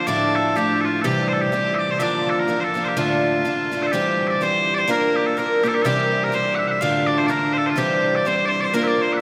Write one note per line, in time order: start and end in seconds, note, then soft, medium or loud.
0.07 0.55 D2 medium
0.07 0.56 A2 medium
0.07 0.54 F3 medium
0.07 0.55 A3 medium
0.07 0.55 D4 medium
0.07 0.56 E4 medium
0.07 0.35 D5 loud
0.35 0.57 A4 medium
0.55 1.04 F3 medium
0.55 1.04 A3 medium
0.55 1.04 D4 medium
0.55 1.04 E4 medium
0.55 0.81 G4 loud
0.81 1.01 F4 medium
0.81 0.85 A4 medium
1.01 1.52 C3 medium
1.01 1.51 E3 medium
1.01 1.52 G3 medium
1.01 1.52 C4 medium
1.01 1.52 G4 medium
1.01 1.28 G4 medium
1.01 1.05 A4 medium
1.28 1.33 C5 medium
1.33 1.41 A4 medium
1.41 1.52 G4 medium
1.52 2.00 E3 medium
1.52 2.00 G3 medium
1.52 2.01 C4 medium
1.52 1.75 G4 loud
1.52 2.01 G4 medium
1.75 1.91 D5 medium
1.75 1.79 E5 medium
1.91 1.99 C5 medium
1.99 2.48 D2 medium
1.99 2.48 D3 medium
1.99 2.46 F3 medium
1.99 2.47 A#3 medium
1.99 2.48 D4 medium
1.99 2.48 F4 medium
1.99 2.30 D5 loud
1.99 2.03 E5 loud
2.30 2.40 A4 medium
2.40 2.60 A#4 medium
2.48 2.73 F3 soft
2.48 2.74 A#3 medium
2.48 2.75 D4 medium
2.48 2.76 F4 medium
2.60 2.85 A4 medium
2.60 2.64 C5 medium
2.74 2.96 F3 medium
2.74 2.96 A#3 medium
2.74 2.96 D4 medium
2.74 2.97 F4 medium
2.85 2.98 G4 medium
2.85 2.88 C5 medium
2.97 3.45 D2 medium
2.97 3.45 A2 medium
2.97 3.43 D3 medium
2.97 3.44 A3 medium
2.97 3.45 D4 medium
2.97 3.45 F4 medium
2.97 3.83 F4 medium
3.45 3.70 D3 medium
3.45 3.71 A3 medium
3.45 3.72 D4 medium
3.45 3.73 F4 medium
3.72 3.93 D3 medium
3.72 3.93 A3 medium
3.72 3.93 D4 medium
3.72 3.94 F4 medium
3.83 3.87 C5 medium
3.87 3.92 A4 medium
3.92 4.41 C3 medium
3.92 4.39 E3 medium
3.92 4.40 G3 medium
3.92 4.41 C4 medium
3.92 4.28 G4 medium
3.92 4.42 G4 medium
4.28 4.42 D5 medium
4.28 4.30 E5 medium
4.41 4.87 E3 soft
4.41 4.88 G3 medium
4.41 4.89 C4 medium
4.41 4.89 G4 medium
4.41 4.74 C5 loud
4.74 4.78 D5 medium
4.78 4.91 C5 medium
4.88 5.36 A#3 medium
4.88 5.37 D4 medium
4.88 5.37 F4 medium
4.88 5.37 A#4 medium
4.88 5.16 A#4 loud
5.16 5.26 G4 medium
5.26 5.38 A4 medium
5.37 5.62 A#3 medium
5.37 5.63 D4 medium
5.37 5.64 F4 medium
5.37 5.64 A#4 medium
5.37 5.65 A#4 medium
5.63 5.84 A#3 medium
5.63 5.85 D4 medium
5.63 5.85 F4 medium
5.63 5.68 G4 medium
5.63 5.86 A#4 medium
5.68 5.75 A4 medium
5.75 5.82 G4 medium
5.82 6.33 C3 medium
5.82 6.31 E3 medium
5.82 6.32 G3 medium
5.82 6.33 C4 medium
5.82 6.24 G4 medium
5.82 5.86 A4 medium
5.86 6.33 G4 medium
6.24 6.34 A#4 medium
6.32 6.80 E3 medium
6.32 6.81 G3 medium
6.32 6.81 C4 medium
6.32 6.82 G4 medium
6.32 6.55 C5 loud
6.55 6.67 E5 loud
6.55 6.58 F#5 loud
6.67 6.81 E5 medium
6.67 6.71 F#5 medium
6.81 7.29 D2 medium
6.81 7.29 A2 medium
6.81 7.27 D3 medium
6.81 7.28 A3 medium
6.81 7.29 D4 medium
6.81 7.30 F4 medium
6.81 7.07 F5 loud
7.07 7.18 D5 medium
7.18 7.26 C5 medium
7.26 7.76 D3 medium
7.26 7.77 A3 medium
7.26 7.77 D4 medium
7.26 7.53 A#4 loud
7.26 7.30 D5 loud
7.31 7.78 F4 medium
7.53 7.58 C5 medium
7.58 7.66 A4 medium
7.66 7.78 F4 medium
7.66 7.70 C5 medium
7.76 8.24 C3 medium
7.76 8.24 E3 medium
7.76 8.25 G3 medium
7.76 8.25 C4 medium
7.76 8.16 G4 medium
7.76 8.25 G4 medium
8.16 8.27 D5 medium
8.25 8.73 E3 soft
8.25 8.73 G3 medium
8.25 8.74 C4 medium
8.25 8.74 G4 medium
8.25 8.36 C5 loud
8.36 8.45 C5 medium
8.45 8.60 C5 loud
8.45 8.49 D5 loud
8.60 8.74 C5 medium
8.60 8.64 D5 medium
8.74 9.19 A#3 medium
8.74 9.20 D4 medium
8.74 9.21 F4 medium
8.74 8.83 A#4 medium
8.74 9.21 A#4 medium
8.83 8.88 E5 medium
8.88 9.02 D5 medium
9.02 9.13 C5 medium
9.13 9.21 E5 medium
9.13 9.17 F#5 medium